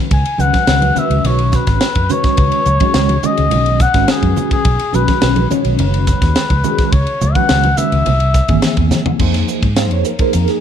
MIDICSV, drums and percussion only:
0, 0, Header, 1, 2, 480
1, 0, Start_track
1, 0, Key_signature, 4, "minor"
1, 0, Tempo, 568182
1, 95, Time_signature, 4, 2, 24, 8
1, 8959, End_track
2, 0, Start_track
2, 0, Title_t, "Drums"
2, 92, Note_on_c, 9, 51, 80
2, 95, Note_on_c, 9, 36, 106
2, 176, Note_off_c, 9, 51, 0
2, 179, Note_off_c, 9, 36, 0
2, 215, Note_on_c, 9, 51, 62
2, 299, Note_off_c, 9, 51, 0
2, 324, Note_on_c, 9, 63, 58
2, 332, Note_on_c, 9, 44, 88
2, 409, Note_off_c, 9, 63, 0
2, 417, Note_off_c, 9, 44, 0
2, 450, Note_on_c, 9, 63, 62
2, 454, Note_on_c, 9, 51, 58
2, 456, Note_on_c, 9, 36, 74
2, 456, Note_on_c, 9, 38, 31
2, 535, Note_off_c, 9, 63, 0
2, 538, Note_off_c, 9, 51, 0
2, 540, Note_off_c, 9, 38, 0
2, 541, Note_off_c, 9, 36, 0
2, 568, Note_on_c, 9, 51, 86
2, 570, Note_on_c, 9, 38, 106
2, 653, Note_off_c, 9, 51, 0
2, 654, Note_off_c, 9, 38, 0
2, 689, Note_on_c, 9, 63, 70
2, 692, Note_on_c, 9, 51, 63
2, 774, Note_off_c, 9, 63, 0
2, 777, Note_off_c, 9, 51, 0
2, 809, Note_on_c, 9, 44, 91
2, 815, Note_on_c, 9, 64, 62
2, 893, Note_off_c, 9, 44, 0
2, 900, Note_off_c, 9, 64, 0
2, 934, Note_on_c, 9, 51, 60
2, 1019, Note_off_c, 9, 51, 0
2, 1052, Note_on_c, 9, 51, 75
2, 1056, Note_on_c, 9, 64, 65
2, 1137, Note_off_c, 9, 51, 0
2, 1141, Note_off_c, 9, 64, 0
2, 1170, Note_on_c, 9, 51, 53
2, 1255, Note_off_c, 9, 51, 0
2, 1286, Note_on_c, 9, 44, 79
2, 1288, Note_on_c, 9, 38, 29
2, 1292, Note_on_c, 9, 36, 80
2, 1370, Note_off_c, 9, 44, 0
2, 1372, Note_off_c, 9, 38, 0
2, 1376, Note_off_c, 9, 36, 0
2, 1409, Note_on_c, 9, 51, 60
2, 1411, Note_on_c, 9, 38, 32
2, 1414, Note_on_c, 9, 36, 81
2, 1494, Note_off_c, 9, 51, 0
2, 1496, Note_off_c, 9, 38, 0
2, 1499, Note_off_c, 9, 36, 0
2, 1526, Note_on_c, 9, 51, 78
2, 1527, Note_on_c, 9, 38, 107
2, 1610, Note_off_c, 9, 51, 0
2, 1612, Note_off_c, 9, 38, 0
2, 1649, Note_on_c, 9, 51, 56
2, 1653, Note_on_c, 9, 36, 66
2, 1656, Note_on_c, 9, 63, 55
2, 1734, Note_off_c, 9, 51, 0
2, 1737, Note_off_c, 9, 36, 0
2, 1740, Note_off_c, 9, 63, 0
2, 1768, Note_on_c, 9, 44, 79
2, 1774, Note_on_c, 9, 64, 57
2, 1853, Note_off_c, 9, 44, 0
2, 1858, Note_off_c, 9, 64, 0
2, 1889, Note_on_c, 9, 51, 54
2, 1891, Note_on_c, 9, 38, 31
2, 1893, Note_on_c, 9, 36, 79
2, 1974, Note_off_c, 9, 51, 0
2, 1976, Note_off_c, 9, 38, 0
2, 1978, Note_off_c, 9, 36, 0
2, 2004, Note_on_c, 9, 51, 75
2, 2010, Note_on_c, 9, 36, 99
2, 2089, Note_off_c, 9, 51, 0
2, 2095, Note_off_c, 9, 36, 0
2, 2126, Note_on_c, 9, 51, 57
2, 2210, Note_off_c, 9, 51, 0
2, 2243, Note_on_c, 9, 44, 81
2, 2250, Note_on_c, 9, 63, 55
2, 2328, Note_off_c, 9, 44, 0
2, 2335, Note_off_c, 9, 63, 0
2, 2366, Note_on_c, 9, 51, 61
2, 2371, Note_on_c, 9, 36, 77
2, 2372, Note_on_c, 9, 63, 57
2, 2451, Note_off_c, 9, 51, 0
2, 2456, Note_off_c, 9, 36, 0
2, 2457, Note_off_c, 9, 63, 0
2, 2483, Note_on_c, 9, 51, 83
2, 2485, Note_on_c, 9, 38, 116
2, 2568, Note_off_c, 9, 51, 0
2, 2569, Note_off_c, 9, 38, 0
2, 2611, Note_on_c, 9, 51, 58
2, 2616, Note_on_c, 9, 63, 64
2, 2695, Note_off_c, 9, 51, 0
2, 2700, Note_off_c, 9, 63, 0
2, 2728, Note_on_c, 9, 44, 95
2, 2732, Note_on_c, 9, 64, 62
2, 2813, Note_off_c, 9, 44, 0
2, 2817, Note_off_c, 9, 64, 0
2, 2851, Note_on_c, 9, 51, 61
2, 2935, Note_off_c, 9, 51, 0
2, 2964, Note_on_c, 9, 64, 65
2, 2967, Note_on_c, 9, 51, 83
2, 3049, Note_off_c, 9, 64, 0
2, 3051, Note_off_c, 9, 51, 0
2, 3091, Note_on_c, 9, 51, 56
2, 3176, Note_off_c, 9, 51, 0
2, 3207, Note_on_c, 9, 44, 87
2, 3208, Note_on_c, 9, 38, 31
2, 3210, Note_on_c, 9, 36, 89
2, 3291, Note_off_c, 9, 44, 0
2, 3293, Note_off_c, 9, 38, 0
2, 3295, Note_off_c, 9, 36, 0
2, 3328, Note_on_c, 9, 51, 63
2, 3330, Note_on_c, 9, 38, 33
2, 3331, Note_on_c, 9, 36, 87
2, 3413, Note_off_c, 9, 51, 0
2, 3414, Note_off_c, 9, 38, 0
2, 3415, Note_off_c, 9, 36, 0
2, 3446, Note_on_c, 9, 51, 89
2, 3448, Note_on_c, 9, 38, 110
2, 3531, Note_off_c, 9, 51, 0
2, 3532, Note_off_c, 9, 38, 0
2, 3569, Note_on_c, 9, 51, 53
2, 3571, Note_on_c, 9, 36, 66
2, 3574, Note_on_c, 9, 63, 54
2, 3653, Note_off_c, 9, 51, 0
2, 3656, Note_off_c, 9, 36, 0
2, 3658, Note_off_c, 9, 63, 0
2, 3687, Note_on_c, 9, 44, 80
2, 3687, Note_on_c, 9, 64, 63
2, 3771, Note_off_c, 9, 64, 0
2, 3772, Note_off_c, 9, 44, 0
2, 3809, Note_on_c, 9, 51, 64
2, 3811, Note_on_c, 9, 36, 73
2, 3894, Note_off_c, 9, 51, 0
2, 3896, Note_off_c, 9, 36, 0
2, 3926, Note_on_c, 9, 51, 83
2, 3929, Note_on_c, 9, 36, 106
2, 4011, Note_off_c, 9, 51, 0
2, 4014, Note_off_c, 9, 36, 0
2, 4050, Note_on_c, 9, 51, 66
2, 4135, Note_off_c, 9, 51, 0
2, 4165, Note_on_c, 9, 63, 57
2, 4169, Note_on_c, 9, 44, 79
2, 4250, Note_off_c, 9, 63, 0
2, 4253, Note_off_c, 9, 44, 0
2, 4291, Note_on_c, 9, 51, 63
2, 4292, Note_on_c, 9, 36, 74
2, 4293, Note_on_c, 9, 38, 30
2, 4296, Note_on_c, 9, 63, 59
2, 4375, Note_off_c, 9, 51, 0
2, 4377, Note_off_c, 9, 36, 0
2, 4377, Note_off_c, 9, 38, 0
2, 4381, Note_off_c, 9, 63, 0
2, 4406, Note_on_c, 9, 51, 91
2, 4408, Note_on_c, 9, 38, 110
2, 4490, Note_off_c, 9, 51, 0
2, 4492, Note_off_c, 9, 38, 0
2, 4528, Note_on_c, 9, 51, 60
2, 4531, Note_on_c, 9, 63, 65
2, 4612, Note_off_c, 9, 51, 0
2, 4615, Note_off_c, 9, 63, 0
2, 4650, Note_on_c, 9, 44, 91
2, 4661, Note_on_c, 9, 64, 64
2, 4735, Note_off_c, 9, 44, 0
2, 4745, Note_off_c, 9, 64, 0
2, 4769, Note_on_c, 9, 51, 65
2, 4854, Note_off_c, 9, 51, 0
2, 4888, Note_on_c, 9, 51, 79
2, 4898, Note_on_c, 9, 64, 63
2, 4973, Note_off_c, 9, 51, 0
2, 4982, Note_off_c, 9, 64, 0
2, 5016, Note_on_c, 9, 51, 61
2, 5100, Note_off_c, 9, 51, 0
2, 5128, Note_on_c, 9, 44, 81
2, 5129, Note_on_c, 9, 38, 31
2, 5130, Note_on_c, 9, 36, 83
2, 5212, Note_off_c, 9, 44, 0
2, 5214, Note_off_c, 9, 38, 0
2, 5215, Note_off_c, 9, 36, 0
2, 5253, Note_on_c, 9, 36, 81
2, 5253, Note_on_c, 9, 51, 62
2, 5254, Note_on_c, 9, 38, 32
2, 5337, Note_off_c, 9, 36, 0
2, 5337, Note_off_c, 9, 51, 0
2, 5339, Note_off_c, 9, 38, 0
2, 5369, Note_on_c, 9, 51, 82
2, 5371, Note_on_c, 9, 38, 109
2, 5454, Note_off_c, 9, 51, 0
2, 5455, Note_off_c, 9, 38, 0
2, 5491, Note_on_c, 9, 51, 54
2, 5492, Note_on_c, 9, 36, 71
2, 5498, Note_on_c, 9, 63, 61
2, 5575, Note_off_c, 9, 51, 0
2, 5577, Note_off_c, 9, 36, 0
2, 5583, Note_off_c, 9, 63, 0
2, 5606, Note_on_c, 9, 44, 80
2, 5612, Note_on_c, 9, 64, 62
2, 5690, Note_off_c, 9, 44, 0
2, 5697, Note_off_c, 9, 64, 0
2, 5731, Note_on_c, 9, 51, 58
2, 5732, Note_on_c, 9, 36, 77
2, 5733, Note_on_c, 9, 38, 31
2, 5816, Note_off_c, 9, 51, 0
2, 5817, Note_off_c, 9, 36, 0
2, 5817, Note_off_c, 9, 38, 0
2, 5849, Note_on_c, 9, 51, 70
2, 5850, Note_on_c, 9, 36, 99
2, 5934, Note_off_c, 9, 51, 0
2, 5935, Note_off_c, 9, 36, 0
2, 5969, Note_on_c, 9, 51, 57
2, 6054, Note_off_c, 9, 51, 0
2, 6091, Note_on_c, 9, 44, 81
2, 6095, Note_on_c, 9, 63, 51
2, 6095, Note_on_c, 9, 64, 55
2, 6175, Note_off_c, 9, 44, 0
2, 6180, Note_off_c, 9, 63, 0
2, 6180, Note_off_c, 9, 64, 0
2, 6212, Note_on_c, 9, 36, 79
2, 6212, Note_on_c, 9, 51, 54
2, 6218, Note_on_c, 9, 63, 60
2, 6296, Note_off_c, 9, 51, 0
2, 6297, Note_off_c, 9, 36, 0
2, 6303, Note_off_c, 9, 63, 0
2, 6326, Note_on_c, 9, 51, 82
2, 6328, Note_on_c, 9, 38, 110
2, 6411, Note_off_c, 9, 51, 0
2, 6413, Note_off_c, 9, 38, 0
2, 6449, Note_on_c, 9, 51, 55
2, 6461, Note_on_c, 9, 63, 70
2, 6534, Note_off_c, 9, 51, 0
2, 6546, Note_off_c, 9, 63, 0
2, 6566, Note_on_c, 9, 44, 96
2, 6571, Note_on_c, 9, 64, 62
2, 6650, Note_off_c, 9, 44, 0
2, 6656, Note_off_c, 9, 64, 0
2, 6692, Note_on_c, 9, 51, 60
2, 6776, Note_off_c, 9, 51, 0
2, 6808, Note_on_c, 9, 51, 76
2, 6814, Note_on_c, 9, 64, 69
2, 6892, Note_off_c, 9, 51, 0
2, 6898, Note_off_c, 9, 64, 0
2, 6927, Note_on_c, 9, 51, 57
2, 7012, Note_off_c, 9, 51, 0
2, 7044, Note_on_c, 9, 44, 78
2, 7046, Note_on_c, 9, 38, 31
2, 7049, Note_on_c, 9, 36, 84
2, 7128, Note_off_c, 9, 44, 0
2, 7130, Note_off_c, 9, 38, 0
2, 7133, Note_off_c, 9, 36, 0
2, 7166, Note_on_c, 9, 51, 59
2, 7171, Note_on_c, 9, 36, 86
2, 7251, Note_off_c, 9, 51, 0
2, 7255, Note_off_c, 9, 36, 0
2, 7284, Note_on_c, 9, 51, 86
2, 7285, Note_on_c, 9, 38, 98
2, 7368, Note_off_c, 9, 51, 0
2, 7370, Note_off_c, 9, 38, 0
2, 7407, Note_on_c, 9, 51, 58
2, 7411, Note_on_c, 9, 36, 63
2, 7491, Note_off_c, 9, 51, 0
2, 7495, Note_off_c, 9, 36, 0
2, 7526, Note_on_c, 9, 44, 75
2, 7528, Note_on_c, 9, 38, 61
2, 7528, Note_on_c, 9, 63, 62
2, 7528, Note_on_c, 9, 64, 64
2, 7611, Note_off_c, 9, 44, 0
2, 7612, Note_off_c, 9, 38, 0
2, 7612, Note_off_c, 9, 63, 0
2, 7612, Note_off_c, 9, 64, 0
2, 7652, Note_on_c, 9, 43, 83
2, 7736, Note_off_c, 9, 43, 0
2, 7766, Note_on_c, 9, 49, 92
2, 7770, Note_on_c, 9, 36, 93
2, 7850, Note_off_c, 9, 49, 0
2, 7854, Note_off_c, 9, 36, 0
2, 7892, Note_on_c, 9, 51, 65
2, 7893, Note_on_c, 9, 38, 30
2, 7976, Note_off_c, 9, 51, 0
2, 7978, Note_off_c, 9, 38, 0
2, 8007, Note_on_c, 9, 44, 79
2, 8091, Note_off_c, 9, 44, 0
2, 8131, Note_on_c, 9, 51, 63
2, 8132, Note_on_c, 9, 36, 72
2, 8216, Note_off_c, 9, 36, 0
2, 8216, Note_off_c, 9, 51, 0
2, 8248, Note_on_c, 9, 44, 82
2, 8248, Note_on_c, 9, 51, 84
2, 8250, Note_on_c, 9, 38, 111
2, 8332, Note_off_c, 9, 44, 0
2, 8332, Note_off_c, 9, 51, 0
2, 8334, Note_off_c, 9, 38, 0
2, 8370, Note_on_c, 9, 51, 59
2, 8455, Note_off_c, 9, 51, 0
2, 8486, Note_on_c, 9, 44, 82
2, 8571, Note_off_c, 9, 44, 0
2, 8607, Note_on_c, 9, 51, 67
2, 8611, Note_on_c, 9, 36, 84
2, 8691, Note_off_c, 9, 51, 0
2, 8695, Note_off_c, 9, 36, 0
2, 8727, Note_on_c, 9, 44, 81
2, 8727, Note_on_c, 9, 51, 79
2, 8811, Note_off_c, 9, 44, 0
2, 8811, Note_off_c, 9, 51, 0
2, 8851, Note_on_c, 9, 51, 55
2, 8852, Note_on_c, 9, 38, 29
2, 8935, Note_off_c, 9, 51, 0
2, 8937, Note_off_c, 9, 38, 0
2, 8959, End_track
0, 0, End_of_file